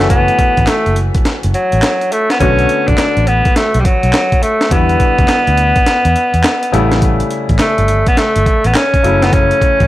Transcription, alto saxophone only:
0.10 0.70 B3 medium
0.68 0.97 A3 medium
1.54 2.14 F#3 medium
2.12 2.32 A3 medium
2.31 2.40 B3 medium
2.40 2.89 C#4 loud
2.88 3.29 D4 loud
3.27 3.58 B3 medium
3.56 3.82 A3 medium
3.80 3.87 G3 medium
3.85 4.44 F#3 medium
4.43 4.71 A3 medium
4.72 7.30 B3 loud
7.61 8.10 A3 medium
8.08 8.20 B3 medium
8.18 8.67 A3 loud
8.66 8.77 B3 medium
8.76 9.25 C#4 loud
9.23 9.35 B3 medium
9.33 9.87 C#4 loud

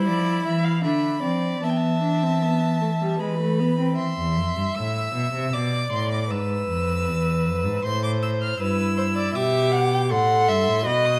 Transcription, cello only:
0.07 0.45 F3 medium
0.46 0.85 E3 medium
0.84 1.23 D3 medium
1.23 1.62 F3 soft
1.63 3.17 E3 medium
3.20 3.97 E3 medium
3.98 4.06 E3 medium
4.18 4.38 E2 medium
4.37 4.56 F2 medium
4.56 4.64 G2 medium
4.75 5.14 A2 medium
5.14 5.33 B2 medium
5.34 5.53 C3 medium
5.53 5.91 B2 medium
5.92 6.32 A2 medium
6.31 6.68 G#2 medium
6.69 7.09 F2 medium
7.08 7.48 E2 medium
7.46 7.67 F2 medium
7.65 7.84 G#2 medium
7.85 8.59 A2 medium
8.60 9.33 G2 medium
9.35 10.12 B2 medium
10.11 10.50 A2 medium
10.49 10.69 G2 medium
10.68 10.88 A2 medium
10.86 11.20 B2 medium

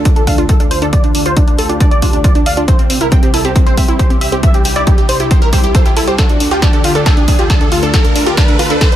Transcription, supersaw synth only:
0.05 0.13 D4 medium
0.16 0.24 A4 medium
0.27 0.35 D4 medium
0.38 0.46 D4 medium
0.49 0.57 A4 medium
0.60 0.68 D4 medium
0.71 0.79 C5 medium
0.82 0.90 D4 medium
0.93 1.01 D5 loud
1.04 1.12 D4 medium
1.15 1.23 D4 medium
1.26 1.34 C5 medium
1.37 1.45 D4 medium
1.48 1.56 D4 medium
1.59 1.67 A4 medium
1.69 1.78 D4 medium
1.80 1.89 D4 medium
1.91 2.00 D5 medium
2.02 2.10 D4 medium
2.13 2.21 D4 medium
2.24 2.32 D5 medium
2.35 2.43 D4 medium
2.46 2.54 F5 medium
2.57 2.65 D4 medium
2.68 2.76 C5 loud
2.79 2.87 C4 medium
2.90 2.98 C4 medium
3.01 3.09 A#4 medium
3.12 3.20 C4 medium
3.23 3.31 C4 medium
3.34 3.42 A4 medium
3.45 3.53 C4 medium
3.56 3.64 C4 medium
3.66 3.75 C5 loud
3.77 3.86 C4 medium
3.88 3.97 C4 medium
3.99 4.08 C5 medium
4.10 4.18 C4 medium
4.21 4.29 E5 medium
4.32 4.40 C4 medium
4.43 4.51 E5 loud
4.54 4.62 G4 medium
4.65 4.73 G4 medium
4.76 4.84 D5 medium
4.87 4.95 G4 medium
4.98 5.06 G4 medium
5.09 5.17 C5 medium
5.20 5.28 G4 medium
5.31 5.39 G4 medium
5.42 5.50 A#4 loud
5.53 5.61 G4 medium
5.64 5.72 G4 medium
5.75 5.83 A4 medium
5.86 5.94 G4 medium
5.97 6.05 A4 medium
6.08 6.16 G4 medium
6.19 6.27 A4 medium
6.30 6.38 D4 medium
6.41 6.49 D4 medium
6.52 6.60 G4 medium
6.62 6.71 D4 medium
6.73 6.81 D4 medium
6.84 6.92 F4 medium
6.95 7.03 D4 medium
7.06 7.14 A4 medium
7.17 7.25 D4 medium
7.28 7.36 D4 medium
7.39 7.47 G4 medium
7.50 7.58 D4 medium
7.61 7.69 D4 medium
7.72 7.80 F4 medium
7.83 7.91 D4 medium
7.94 8.02 A4 loud
8.04 8.13 D4 medium
8.15 8.24 D4 medium
8.26 8.35 G4 medium
8.37 8.46 D4 medium
8.48 8.56 D4 medium
8.59 8.67 F4 medium
8.70 8.78 D4 medium
8.81 8.89 A4 loud
8.92 8.96 D4 medium

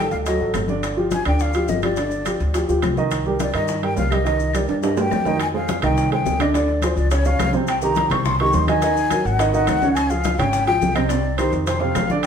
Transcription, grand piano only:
0.00 0.21 G3 medium
0.00 0.21 G4 medium
0.00 0.21 A4 medium
0.26 0.38 F#3 medium
0.26 0.38 F#4 medium
0.26 0.38 A4 medium
0.40 0.63 F#3 medium
0.40 0.64 F#4 medium
0.40 0.64 A4 medium
0.69 0.92 D3 medium
0.69 0.92 D4 medium
0.69 0.93 D5 medium
0.97 1.21 F3 medium
0.97 1.21 F4 medium
0.97 1.21 G4 medium
1.26 1.49 D3 medium
1.26 1.49 D4 medium
1.26 1.49 D5 medium
1.55 1.78 F3 medium
1.55 1.78 F4 medium
1.55 1.78 G4 medium
1.83 1.95 F3 medium
1.83 1.95 F4 medium
1.83 1.95 G4 medium
1.98 2.21 D3 medium
1.98 2.21 D4 medium
1.98 2.21 D5 medium
2.26 2.50 F3 medium
2.26 2.49 F4 medium
2.26 2.50 G4 medium
2.55 2.66 F3 medium
2.55 2.66 F4 medium
2.55 2.66 G4 medium
2.68 2.92 F3 medium
2.68 2.92 F4 medium
2.68 2.92 G4 medium
2.98 3.21 D#3 medium
2.98 3.21 D#4 medium
2.98 3.21 D#5 medium
3.26 3.50 G3 medium
3.26 3.50 G4 medium
3.26 3.50 A#4 medium
3.54 3.78 D#3 medium
3.54 3.78 D#4 medium
3.54 3.78 D#5 medium
3.82 4.06 G3 medium
3.82 4.06 G4 medium
3.82 4.06 A#4 medium
4.11 4.23 G3 medium
4.11 4.23 G4 medium
4.11 4.23 A#4 medium
4.24 4.48 D#3 medium
4.24 4.48 D#4 medium
4.24 4.49 D#5 medium
4.54 4.78 G3 medium
4.54 4.78 G4 medium
4.54 4.78 A#4 medium
4.82 4.94 G3 medium
4.82 4.95 G4 medium
4.82 4.95 A#4 medium
4.97 5.21 G3 medium
4.97 5.21 G4 medium
4.97 5.21 A#4 medium
5.26 5.37 D#3 medium
5.26 5.38 D#4 medium
5.26 5.38 D#5 medium
5.54 5.77 G#3 medium
5.54 5.78 G#4 medium
5.54 5.78 C5 medium
5.83 6.06 D#3 medium
5.83 6.07 D#4 medium
5.83 6.07 D#5 medium
6.12 6.35 G#3 medium
6.12 6.35 G#4 medium
6.12 6.36 C5 medium
6.40 6.52 D3 medium
6.40 6.52 D4 medium
6.40 6.52 D5 medium
6.54 6.78 D3 medium
6.54 6.78 D4 medium
6.54 6.78 D5 medium
6.83 7.07 F3 medium
6.83 7.07 F4 medium
6.83 7.07 G#4 medium
7.11 7.23 C#3 medium
7.11 7.23 C#4 medium
7.11 7.24 C#5 medium
7.26 7.49 C#3 medium
7.26 7.49 C#4 medium
7.26 7.49 C#5 medium
7.53 7.77 C3 medium
7.53 7.78 C4 medium
7.53 7.78 C5 medium
7.82 8.06 D#3 medium
7.82 8.06 D#4 medium
7.82 8.06 G4 medium
8.12 8.35 C3 medium
8.12 8.35 C4 medium
8.12 8.35 C5 medium
8.41 8.63 D#3 medium
8.41 8.64 D#4 medium
8.41 8.64 G4 medium
8.68 8.80 D#3 medium
8.68 8.80 D#4 medium
8.68 8.80 D#5 medium
8.83 9.06 D#3 medium
8.83 9.07 D#4 medium
8.83 9.07 D#5 medium
9.12 9.35 F#3 medium
9.12 9.35 F#4 medium
9.12 9.35 A#4 medium
9.39 9.51 D#3 medium
9.39 9.51 D#4 medium
9.39 9.51 D#5 medium
9.54 9.77 D#3 medium
9.54 9.77 D#4 medium
9.54 9.78 D#5 medium
9.82 10.05 C#3 medium
9.82 10.06 C#4 medium
9.82 10.06 C#5 medium
10.10 10.34 F3 medium
10.10 10.34 F4 medium
10.10 10.34 G#4 medium
10.39 10.62 C#3 medium
10.39 10.62 C#4 medium
10.39 10.63 C#5 medium
10.67 10.91 F3 medium
10.67 10.91 F4 medium
10.67 10.91 G#4 medium
10.95 11.07 C3 medium
10.95 11.07 C4 medium
10.95 11.08 C5 medium
11.10 11.34 C3 medium
11.10 11.34 C4 medium
11.10 11.34 C5 medium
11.38 11.62 D#3 medium
11.38 11.62 D#4 medium
11.38 11.62 G4 medium
11.67 11.79 C3 medium
11.67 11.79 C4 medium
11.67 11.79 C5 medium
11.81 12.04 C3 medium
11.81 12.05 C4 medium
11.81 12.05 C5 medium
12.11 12.26 D3 medium
12.11 12.26 D4 medium
12.11 12.26 D5 medium

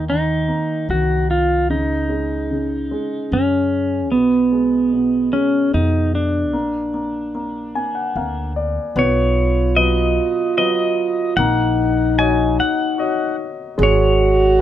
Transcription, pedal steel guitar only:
0.10 0.90 D#4 medium
0.91 1.30 F#4 medium
1.31 1.70 F4 medium
1.71 3.37 D#4 medium
3.33 4.09 C#4 medium
4.12 5.36 B3 medium
5.33 5.74 C#4 medium
5.74 6.15 D#4 medium
6.15 8.52 D4 medium
8.99 9.80 C#5 medium
9.77 10.57 D#5 medium
10.58 11.36 D#5 medium
11.37 12.18 F#5 medium
12.19 12.60 G#5 loud
12.60 13.35 F#5 medium
13.83 14.61 C#5 medium

